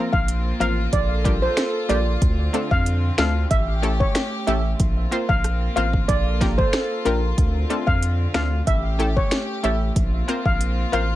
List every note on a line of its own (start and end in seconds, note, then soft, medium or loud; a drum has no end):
0.00 2.19 A#3 medium
0.00 0.91 C4 medium
0.00 3.47 F4 medium
0.13 0.53 A#1 medium
0.13 0.25 F5 medium
0.13 kick medium
0.28 closed hi-hat medium
0.60 0.87 A1 medium
0.60 0.74 F3 medium
0.60 0.74 A#3 medium
0.60 0.74 C4 medium
0.60 0.74 F4 medium
0.60 0.75 A#4 medium
0.60 0.74 F5 medium
0.60 closed hi-hat soft
0.92 1.47 A#1 loud
0.92 2.20 A4 medium
0.92 1.06 D5 medium
0.92 kick medium
0.92 closed hi-hat medium
1.24 1.38 G3 medium
1.24 1.39 A#3 medium
1.24 1.39 D4 medium
1.24 1.39 F4 medium
1.24 1.39 G4 medium
1.24 kick medium
1.24 closed hi-hat soft
1.42 1.54 C5 medium
1.57 finger snap loud
1.57 snare loud
1.57 closed hi-hat medium
1.89 2.16 A#1 loud
1.89 2.03 G3 medium
1.89 2.03 A#3 medium
1.89 2.03 D4 medium
1.89 2.03 F4 medium
1.89 2.04 G4 medium
1.89 2.03 D5 medium
1.89 closed hi-hat soft
2.22 2.49 D2 loud
2.22 3.50 D3 medium
2.22 3.50 C4 medium
2.22 kick loud
2.22 closed hi-hat medium
2.53 2.67 A3 medium
2.53 2.68 C4 medium
2.53 2.68 D4 medium
2.53 2.68 F4 medium
2.53 2.68 A4 medium
2.53 closed hi-hat medium
2.71 3.11 F2 loud
2.71 2.83 F5 medium
2.71 kick loud
2.86 closed hi-hat medium
3.18 3.45 D2 loud
3.18 3.32 A3 medium
3.18 3.32 C4 medium
3.18 3.32 D4 medium
3.18 3.32 F4 medium
3.18 3.33 A4 medium
3.18 3.32 F5 medium
3.18 finger snap medium
3.18 snare loud
3.18 closed hi-hat soft
3.50 4.05 A1 loud
3.50 4.79 A3 medium
3.50 4.78 C#4 medium
3.50 4.79 G4 medium
3.50 3.64 E5 medium
3.50 kick medium
3.50 closed hi-hat medium
3.82 3.96 A3 medium
3.82 3.97 C#4 medium
3.82 3.97 E4 medium
3.82 3.97 G4 medium
3.82 3.97 A4 medium
3.82 closed hi-hat soft
4.00 4.12 C#5 medium
4.00 kick loud
4.15 finger snap loud
4.15 snare loud
4.15 closed hi-hat medium
4.47 4.74 A1 medium
4.47 4.61 A3 medium
4.47 4.61 C#4 medium
4.47 4.61 E4 medium
4.47 4.61 G4 medium
4.47 4.62 A4 medium
4.47 4.61 E5 medium
4.47 closed hi-hat medium
4.79 5.07 A#1 loud
4.79 7.35 A#3 medium
4.79 6.08 C4 medium
4.79 8.63 F4 medium
4.79 kick loud
4.79 closed hi-hat medium
5.11 5.25 A#3 medium
5.11 5.26 C4 medium
5.11 5.26 F4 medium
5.11 5.26 A#4 medium
5.11 5.26 C5 medium
5.11 closed hi-hat medium
5.29 5.69 A#1 medium
5.29 5.41 F5 medium
5.29 kick medium
5.44 cross-stick medium
5.44 closed hi-hat medium
5.76 6.04 A1 loud
5.76 5.90 A#3 medium
5.76 5.90 C4 medium
5.76 5.90 F4 medium
5.76 5.91 A#4 medium
5.76 5.91 C5 medium
5.76 5.90 F5 medium
5.76 closed hi-hat medium
5.93 kick medium
6.08 6.63 A#1 loud
6.08 7.37 A4 medium
6.08 6.22 D5 medium
6.08 kick loud
6.08 closed hi-hat medium
6.41 6.55 A#3 medium
6.41 6.55 D4 medium
6.41 6.55 F4 medium
6.41 6.55 G4 medium
6.41 6.55 A#4 medium
6.41 kick medium
6.41 snare medium
6.41 closed hi-hat soft
6.58 6.70 C5 medium
6.58 kick loud
6.73 finger snap loud
6.73 cross-stick loud
6.73 snare loud
6.73 closed hi-hat medium
7.05 7.33 A#1 loud
7.05 7.19 A#3 medium
7.05 7.19 D4 medium
7.05 7.19 F4 medium
7.05 7.20 G4 medium
7.05 7.19 A#4 medium
7.05 7.20 A#4 medium
7.05 closed hi-hat soft
7.38 7.65 D2 loud
7.38 8.66 D3 medium
7.38 8.66 C4 medium
7.38 kick loud
7.38 closed hi-hat medium
7.70 7.84 A3 medium
7.70 7.84 C4 medium
7.70 7.84 D4 medium
7.70 7.84 F4 medium
7.70 7.84 A4 medium
7.70 closed hi-hat medium
7.87 8.27 F2 medium
7.87 7.99 F5 medium
7.87 kick medium
8.03 closed hi-hat medium
8.34 8.62 D2 loud
8.34 8.48 A3 medium
8.34 8.48 C4 medium
8.34 8.48 D4 medium
8.34 8.49 F4 medium
8.34 8.49 A4 medium
8.34 8.48 F5 medium
8.34 finger snap medium
8.34 snare loud
8.34 closed hi-hat soft
8.67 9.21 A1 loud
8.67 9.95 A3 medium
8.67 9.95 C#4 medium
8.67 9.95 G4 medium
8.67 8.80 E5 medium
8.67 kick loud
8.67 closed hi-hat medium
8.99 9.13 A3 medium
8.99 9.13 C#4 medium
8.99 9.13 E4 medium
8.99 9.13 G4 medium
8.99 9.13 A4 medium
8.99 closed hi-hat soft
9.16 9.28 C#5 medium
9.16 kick loud
9.31 finger snap medium
9.31 snare loud
9.31 closed hi-hat medium
9.63 9.91 A1 loud
9.63 9.77 A3 medium
9.63 9.77 C#4 medium
9.63 9.78 E4 medium
9.63 9.78 G4 medium
9.63 9.78 A4 medium
9.63 9.77 E5 medium
9.63 closed hi-hat medium
9.96 10.23 A#1 loud
9.96 11.16 A#3 medium
9.96 11.16 C4 medium
9.96 11.16 F4 loud
9.96 kick loud
9.96 closed hi-hat medium
10.28 10.42 A#3 medium
10.28 10.42 C4 medium
10.28 10.42 F4 medium
10.28 10.42 A#4 medium
10.28 10.42 C5 medium
10.28 closed hi-hat medium
10.45 10.85 A#1 medium
10.45 10.57 F5 medium
10.45 kick medium
10.61 closed hi-hat medium
10.92 11.16 A1 loud
10.92 11.06 A#3 medium
10.92 11.06 C4 medium
10.92 11.07 F4 medium
10.92 11.07 A#4 medium
10.92 11.07 C5 medium
10.92 11.06 F5 medium
10.92 closed hi-hat soft